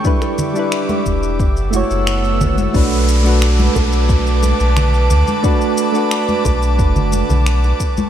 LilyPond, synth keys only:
\new Staff \with { instrumentName = "Synth keys" } { \time 4/4 \key b \minor \tempo 4 = 89 <g d' e' b'>8. <g d' e' b'>4~ <g d' e' b'>16 r8 <a e' fis' cis''>4. | <a d' fis' b'>8. <a d' fis' b'>2.~ <a d' fis' b'>16 | <a d' fis' b'>8. <a d' fis' b'>2~ <a d' fis' b'>8. r8 | }